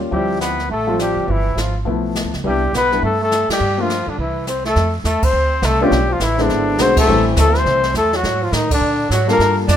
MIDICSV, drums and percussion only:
0, 0, Header, 1, 2, 480
1, 0, Start_track
1, 0, Key_signature, 0, "major"
1, 0, Tempo, 289855
1, 199, Time_signature, 4, 2, 24, 8
1, 7886, Key_signature, -1, "major"
1, 16176, End_track
2, 0, Start_track
2, 0, Title_t, "Drums"
2, 200, Note_on_c, 9, 25, 44
2, 201, Note_on_c, 9, 36, 28
2, 367, Note_off_c, 9, 36, 0
2, 679, Note_on_c, 9, 38, 51
2, 679, Note_on_c, 9, 44, 57
2, 845, Note_off_c, 9, 38, 0
2, 845, Note_off_c, 9, 44, 0
2, 983, Note_on_c, 9, 38, 28
2, 1149, Note_off_c, 9, 38, 0
2, 1163, Note_on_c, 9, 36, 26
2, 1166, Note_off_c, 9, 25, 0
2, 1166, Note_on_c, 9, 25, 41
2, 1329, Note_off_c, 9, 36, 0
2, 1645, Note_on_c, 9, 38, 49
2, 1645, Note_on_c, 9, 44, 44
2, 1810, Note_off_c, 9, 38, 0
2, 1810, Note_off_c, 9, 44, 0
2, 2124, Note_on_c, 9, 36, 29
2, 2128, Note_off_c, 9, 25, 0
2, 2128, Note_on_c, 9, 25, 43
2, 2289, Note_off_c, 9, 36, 0
2, 2607, Note_on_c, 9, 38, 51
2, 2607, Note_on_c, 9, 44, 46
2, 2773, Note_off_c, 9, 38, 0
2, 2773, Note_off_c, 9, 44, 0
2, 3082, Note_on_c, 9, 36, 25
2, 3084, Note_off_c, 9, 25, 0
2, 3084, Note_on_c, 9, 25, 39
2, 3247, Note_off_c, 9, 36, 0
2, 3566, Note_on_c, 9, 38, 45
2, 3566, Note_on_c, 9, 44, 48
2, 3731, Note_off_c, 9, 38, 0
2, 3731, Note_off_c, 9, 44, 0
2, 3866, Note_on_c, 9, 38, 35
2, 4032, Note_off_c, 9, 38, 0
2, 4048, Note_on_c, 9, 36, 28
2, 4056, Note_off_c, 9, 25, 0
2, 4056, Note_on_c, 9, 25, 43
2, 4214, Note_off_c, 9, 36, 0
2, 4539, Note_on_c, 9, 38, 51
2, 4539, Note_on_c, 9, 44, 42
2, 4704, Note_off_c, 9, 38, 0
2, 4704, Note_off_c, 9, 44, 0
2, 4834, Note_on_c, 9, 38, 30
2, 4999, Note_off_c, 9, 38, 0
2, 5015, Note_on_c, 9, 36, 28
2, 5024, Note_off_c, 9, 25, 0
2, 5024, Note_on_c, 9, 25, 44
2, 5180, Note_off_c, 9, 36, 0
2, 5490, Note_on_c, 9, 38, 52
2, 5490, Note_on_c, 9, 44, 49
2, 5656, Note_off_c, 9, 38, 0
2, 5656, Note_off_c, 9, 44, 0
2, 5798, Note_on_c, 9, 38, 65
2, 5798, Note_on_c, 9, 51, 63
2, 5963, Note_off_c, 9, 38, 0
2, 5963, Note_off_c, 9, 51, 0
2, 5975, Note_off_c, 9, 25, 0
2, 5975, Note_on_c, 9, 25, 40
2, 6453, Note_on_c, 9, 38, 50
2, 6453, Note_on_c, 9, 44, 42
2, 6619, Note_off_c, 9, 38, 0
2, 6619, Note_off_c, 9, 44, 0
2, 6929, Note_off_c, 9, 25, 0
2, 6929, Note_on_c, 9, 25, 35
2, 6929, Note_on_c, 9, 36, 26
2, 7095, Note_off_c, 9, 36, 0
2, 7401, Note_on_c, 9, 38, 47
2, 7401, Note_on_c, 9, 44, 48
2, 7566, Note_off_c, 9, 38, 0
2, 7566, Note_off_c, 9, 44, 0
2, 7701, Note_on_c, 9, 38, 33
2, 7866, Note_off_c, 9, 38, 0
2, 7880, Note_off_c, 9, 25, 0
2, 7880, Note_on_c, 9, 25, 41
2, 7880, Note_on_c, 9, 38, 42
2, 7881, Note_on_c, 9, 36, 27
2, 8046, Note_off_c, 9, 38, 0
2, 8047, Note_off_c, 9, 36, 0
2, 8357, Note_on_c, 9, 36, 18
2, 8359, Note_on_c, 9, 38, 58
2, 8359, Note_on_c, 9, 44, 50
2, 8523, Note_off_c, 9, 36, 0
2, 8524, Note_off_c, 9, 38, 0
2, 8524, Note_off_c, 9, 44, 0
2, 8653, Note_on_c, 9, 49, 68
2, 8657, Note_on_c, 9, 36, 76
2, 8819, Note_off_c, 9, 49, 0
2, 8823, Note_off_c, 9, 36, 0
2, 8841, Note_off_c, 9, 25, 0
2, 8841, Note_on_c, 9, 25, 43
2, 9316, Note_on_c, 9, 38, 57
2, 9316, Note_on_c, 9, 44, 47
2, 9317, Note_on_c, 9, 36, 22
2, 9481, Note_off_c, 9, 38, 0
2, 9481, Note_off_c, 9, 44, 0
2, 9482, Note_off_c, 9, 36, 0
2, 9797, Note_off_c, 9, 25, 0
2, 9797, Note_on_c, 9, 25, 45
2, 9797, Note_on_c, 9, 36, 27
2, 9797, Note_on_c, 9, 38, 44
2, 9962, Note_off_c, 9, 38, 0
2, 9963, Note_off_c, 9, 36, 0
2, 10270, Note_on_c, 9, 38, 59
2, 10270, Note_on_c, 9, 44, 57
2, 10276, Note_on_c, 9, 36, 26
2, 10435, Note_off_c, 9, 38, 0
2, 10435, Note_off_c, 9, 44, 0
2, 10442, Note_off_c, 9, 36, 0
2, 10571, Note_on_c, 9, 38, 34
2, 10737, Note_off_c, 9, 38, 0
2, 10754, Note_off_c, 9, 25, 0
2, 10754, Note_on_c, 9, 25, 45
2, 10754, Note_on_c, 9, 38, 39
2, 10758, Note_on_c, 9, 36, 18
2, 10919, Note_off_c, 9, 38, 0
2, 10923, Note_off_c, 9, 36, 0
2, 11235, Note_on_c, 9, 38, 56
2, 11235, Note_on_c, 9, 44, 54
2, 11239, Note_on_c, 9, 36, 19
2, 11401, Note_off_c, 9, 38, 0
2, 11401, Note_off_c, 9, 44, 0
2, 11405, Note_off_c, 9, 36, 0
2, 11539, Note_on_c, 9, 36, 79
2, 11539, Note_on_c, 9, 49, 77
2, 11704, Note_off_c, 9, 49, 0
2, 11705, Note_off_c, 9, 36, 0
2, 11718, Note_off_c, 9, 25, 0
2, 11718, Note_on_c, 9, 25, 46
2, 12196, Note_on_c, 9, 38, 55
2, 12196, Note_on_c, 9, 44, 64
2, 12362, Note_off_c, 9, 38, 0
2, 12362, Note_off_c, 9, 44, 0
2, 12500, Note_on_c, 9, 38, 36
2, 12666, Note_off_c, 9, 38, 0
2, 12681, Note_on_c, 9, 36, 24
2, 12685, Note_off_c, 9, 25, 0
2, 12685, Note_on_c, 9, 25, 39
2, 12685, Note_on_c, 9, 38, 37
2, 12846, Note_off_c, 9, 36, 0
2, 12850, Note_off_c, 9, 38, 0
2, 12974, Note_on_c, 9, 38, 51
2, 13140, Note_off_c, 9, 38, 0
2, 13159, Note_on_c, 9, 38, 53
2, 13159, Note_on_c, 9, 44, 52
2, 13160, Note_on_c, 9, 36, 18
2, 13324, Note_off_c, 9, 38, 0
2, 13324, Note_off_c, 9, 44, 0
2, 13326, Note_off_c, 9, 36, 0
2, 13462, Note_on_c, 9, 38, 40
2, 13628, Note_off_c, 9, 38, 0
2, 13641, Note_off_c, 9, 25, 0
2, 13641, Note_on_c, 9, 25, 51
2, 13641, Note_on_c, 9, 36, 22
2, 13641, Note_on_c, 9, 38, 45
2, 13806, Note_off_c, 9, 36, 0
2, 13807, Note_off_c, 9, 38, 0
2, 14119, Note_on_c, 9, 38, 58
2, 14119, Note_on_c, 9, 44, 53
2, 14121, Note_on_c, 9, 36, 20
2, 14284, Note_off_c, 9, 38, 0
2, 14284, Note_off_c, 9, 44, 0
2, 14286, Note_off_c, 9, 36, 0
2, 14418, Note_on_c, 9, 36, 68
2, 14422, Note_on_c, 9, 49, 72
2, 14584, Note_off_c, 9, 36, 0
2, 14588, Note_off_c, 9, 49, 0
2, 14603, Note_off_c, 9, 25, 0
2, 14603, Note_on_c, 9, 25, 41
2, 15080, Note_on_c, 9, 36, 24
2, 15089, Note_on_c, 9, 38, 62
2, 15089, Note_on_c, 9, 44, 58
2, 15245, Note_off_c, 9, 36, 0
2, 15254, Note_off_c, 9, 38, 0
2, 15254, Note_off_c, 9, 44, 0
2, 15380, Note_on_c, 9, 38, 40
2, 15545, Note_off_c, 9, 38, 0
2, 15558, Note_on_c, 9, 36, 20
2, 15563, Note_off_c, 9, 25, 0
2, 15563, Note_on_c, 9, 25, 53
2, 15563, Note_on_c, 9, 38, 42
2, 15724, Note_off_c, 9, 36, 0
2, 15729, Note_off_c, 9, 38, 0
2, 16038, Note_on_c, 9, 38, 64
2, 16038, Note_on_c, 9, 44, 60
2, 16039, Note_on_c, 9, 36, 27
2, 16176, Note_off_c, 9, 25, 0
2, 16176, Note_off_c, 9, 36, 0
2, 16176, Note_off_c, 9, 38, 0
2, 16176, Note_off_c, 9, 44, 0
2, 16176, End_track
0, 0, End_of_file